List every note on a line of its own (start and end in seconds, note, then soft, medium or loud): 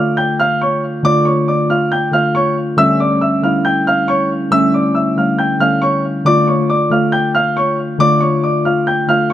0.00 1.03 D3 loud
0.00 1.04 A3 medium
0.00 1.06 F4 loud
0.00 0.16 F5 medium
0.00 0.16 F6 medium
0.17 0.37 G5 medium
0.17 0.37 G6 medium
0.40 0.59 F5 medium
0.40 0.59 F6 medium
0.62 0.81 C#5 medium
0.62 0.81 C#6 medium
1.03 1.53 D3 loud
1.03 1.54 A3 loud
1.03 1.54 F4 loud
1.03 1.25 D5 medium
1.03 1.24 D6 loud
1.25 1.46 C#5 medium
1.25 1.45 C#6 medium
1.48 1.68 D5 medium
1.48 1.68 D6 medium
1.68 2.02 D3 medium
1.68 2.03 A3 medium
1.68 2.04 F4 medium
1.68 1.90 F5 medium
1.68 1.90 F6 medium
1.92 2.12 G5 medium
1.92 2.11 G6 medium
2.11 2.62 D3 medium
2.11 2.62 A3 medium
2.11 2.63 F4 medium
2.11 2.33 F5 medium
2.11 2.33 F6 medium
2.35 2.55 C#5 medium
2.35 2.54 C#6 medium
2.77 3.02 D3 loud
2.77 3.03 G3 loud
2.77 3.03 A3 medium
2.77 3.04 C#4 loud
2.77 2.98 E5 medium
2.77 2.98 E6 loud
3.00 3.20 D5 medium
3.00 3.20 D6 medium
3.10 3.35 D3 medium
3.10 3.36 G3 medium
3.10 3.36 A3 medium
3.10 3.36 C#4 medium
3.21 3.42 E5 medium
3.21 3.41 E6 medium
3.42 4.08 D3 medium
3.42 4.09 G3 medium
3.42 4.09 A3 medium
3.42 4.10 E4 medium
3.42 3.64 F5 medium
3.42 3.63 F6 medium
3.65 3.85 G5 medium
3.65 3.85 G6 medium
3.87 4.07 F5 medium
3.87 4.07 F6 medium
4.08 4.29 C#5 medium
4.08 4.28 C#6 medium
4.50 5.01 D3 medium
4.50 5.01 G3 medium
4.50 5.02 A3 medium
4.50 5.02 C#4 loud
4.50 4.72 E5 medium
4.50 4.72 E6 loud
4.74 4.94 D5 medium
4.74 4.94 D6 medium
4.95 5.15 E5 medium
4.95 5.15 E6 medium
5.16 5.50 D3 medium
5.16 5.50 G3 medium
5.16 5.51 A3 medium
5.16 5.51 C#4 medium
5.16 5.38 F5 medium
5.16 5.37 F6 medium
5.38 5.59 G5 medium
5.38 5.58 G6 medium
5.59 6.09 D3 medium
5.59 6.10 G3 medium
5.59 6.10 A3 medium
5.59 6.11 C#4 medium
5.59 5.81 F5 medium
5.59 5.80 F6 medium
5.82 6.02 C#5 medium
5.82 6.02 C#6 medium
6.25 6.50 D3 loud
6.25 6.51 A3 medium
6.25 6.51 F4 loud
6.25 6.46 D5 medium
6.25 6.46 D6 loud
6.47 6.68 C#5 medium
6.47 6.67 C#6 medium
6.58 6.83 D3 medium
6.58 6.84 A3 medium
6.58 6.84 F4 medium
6.70 6.90 D5 medium
6.70 6.89 D6 medium
6.90 7.56 D3 medium
6.90 7.57 A3 medium
6.90 7.57 F4 medium
6.90 7.12 F5 medium
6.90 7.11 F6 medium
7.12 7.33 G5 medium
7.12 7.32 G6 medium
7.35 7.55 F5 medium
7.35 7.54 F6 medium
7.57 7.77 C#5 medium
7.57 7.76 C#6 medium
7.98 8.49 D3 loud
7.98 8.49 A3 loud
7.98 8.50 F4 loud
7.98 8.20 D5 medium
7.98 8.20 D6 loud
8.21 8.41 C#5 medium
8.21 8.41 C#6 medium
8.43 8.64 D5 medium
8.43 8.63 D6 medium
8.63 8.98 D3 medium
8.63 8.98 A3 medium
8.63 8.99 F4 medium
8.63 8.85 F5 medium
8.63 8.85 F6 medium
8.87 9.07 G5 medium
8.87 9.07 G6 medium
9.07 9.33 D3 medium
9.07 9.33 A3 medium
9.07 9.33 F4 medium
9.07 9.29 F5 medium
9.07 9.28 F6 medium